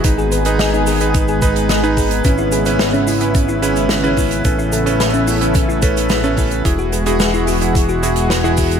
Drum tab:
HH |x-xxx-oxx-xxx-ox|x-xxx-oxx-xxx-ox|x-xxx-oxx-xxx-ox|x-xxx-oxx-xxx-ox|
SH |xxxxxxxxxxxxxxxx|xxxxxxxxxxxxxxxx|xxxxxxxxxxxxxxxx|xxxxxxxxxxxxxxxx|
SD |----o-------o---|----o-------o---|----o-------o---|----o-------o---|
BD |o-------o-o---o-|o-------o-----o-|o-------o-o---o-|o-------o-----o-|